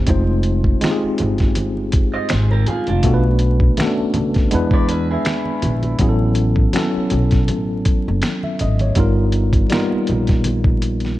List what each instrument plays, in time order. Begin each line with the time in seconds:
0.07 upright bass F1, tine electric piano G#3 C4 D#4 F4 C5, kick, closed hi-hat, muted conga
0.43 closed hi-hat
0.64 kick
0.81 tine electric piano G#3 C4 D#4 F4 G4, finger snap, snare, closed hi-hat, muted conga, high conga
0.91 tine electric piano G#4
1.04 muted upright bass stroke
1.18 upright bass G1, closed hi-hat, high conga, low conga
1.38 kick, snare, closed hi-hat
1.55 closed hi-hat, muted conga, high conga
1.77 muted conga
1.92 kick, closed hi-hat
2.13 clean electric guitar C5 D#5
2.29 clean electric guitar G#4 C5, finger snap, snare, closed hi-hat, muted conga
2.33 upright bass G#1
2.51 clean electric guitar G4 A#4, muted conga, high conga
2.66 clean electric guitar F4 G#4, closed hi-hat, high conga, low conga
2.87 upright bass F1, clean electric guitar D4 F4, closed hi-hat, high conga
3.03 upright bass B1, tine electric piano A3 B3 D4 F#4, kick, closed hi-hat, muted conga
3.07 tine electric piano A4
3.14 tine electric piano B4
3.24 muted conga
3.39 closed hi-hat
3.60 kick
3.77 tine electric piano A3 B3 C#4 F#4, finger snap, snare, closed hi-hat, muted conga, high conga
3.82 tine electric piano A4
3.86 tine electric piano D4
3.98 muted upright bass stroke, muted conga
4.14 upright bass C#2, closed hi-hat, high conga, low conga
4.34 kick, snare, closed hi-hat
4.51 upright bass E2, tine electric piano G#3 B3 D4 E4, closed hi-hat, high conga
4.55 tine electric piano B4
4.71 clean electric guitar B4 D5, kick
4.89 clean electric guitar G#4 B4, closed hi-hat
5.11 clean electric guitar E4 G#4
5.25 finger snap, snare, closed hi-hat
5.45 muted conga, high conga
5.62 upright bass A#1, closed hi-hat, high conga, low conga
5.82 closed hi-hat, high conga
5.99 upright bass A1, tine electric piano F#3 B3 C#4 E4, kick, closed hi-hat, muted conga
6.03 tine electric piano G#4
6.09 tine electric piano A4
6.19 muted conga
6.35 closed hi-hat
6.56 kick
6.73 tine electric piano F#3 B3 C#4 E4, finger snap, snare, closed hi-hat, muted conga, high conga
6.77 tine electric piano A4
6.94 muted upright bass stroke, muted conga
7.10 upright bass B1, closed hi-hat, high conga, low conga
7.31 kick, snare, closed hi-hat
7.48 upright bass A1, closed hi-hat, high conga
7.85 kick, closed hi-hat
8.08 upright bass F#1
8.22 finger snap, snare, closed hi-hat, muted conga
8.43 tine electric piano E5, muted conga, high conga
8.59 upright bass G#1, tine electric piano D#5, closed hi-hat, high conga, low conga
8.79 tine electric piano C#5, closed hi-hat, high conga
8.95 upright bass G1, tine electric piano G3 B3 D#4 F4, kick, closed hi-hat, muted conga
9.00 tine electric piano A#4
9.32 closed hi-hat
9.53 kick, closed hi-hat
9.70 tine electric piano G3 A#3 D#4 F4 A#4, finger snap, snare, closed hi-hat, muted conga, high conga
9.77 tine electric piano B3
9.92 muted upright bass stroke, muted conga
10.07 upright bass A#1, closed hi-hat, high conga, low conga
10.27 kick, snare, closed hi-hat
10.44 closed hi-hat, high conga
10.64 kick, muted conga
10.82 closed hi-hat
11.00 closed hi-hat
11.05 snare